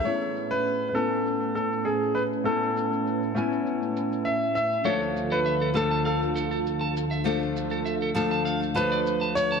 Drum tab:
SH |xxxxxxxxxxxxxxxx|xxxxxxxxxxxxxxxx|xxxxxxxxxxxxxxxx|xxxxxxxxxxxxxxxx|